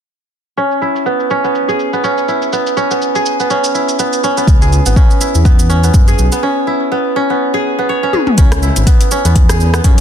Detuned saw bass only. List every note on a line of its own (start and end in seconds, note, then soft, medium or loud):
4.47 4.80 C#2 loud
4.86 4.94 G#1 medium
5.35 5.90 E2 loud
5.94 6.13 F#2 medium
6.18 6.29 B1 medium
8.38 8.71 C#2 loud
8.76 8.84 G#1 medium
9.25 9.80 E2 loud
9.84 10.01 F#2 medium